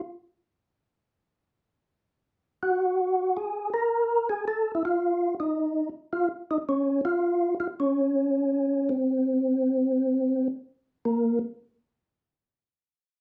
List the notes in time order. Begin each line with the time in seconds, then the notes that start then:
2.63 F#4
3.37 G#4
3.74 A#4
4.29 G#4
4.48 A4
4.75 E4
4.85 F4
5.40 D#4
6.13 F4
6.51 D#4
6.69 C#4
7.05 F4
7.60 F4
7.80 C#4
8.89 C4
11.05 A#3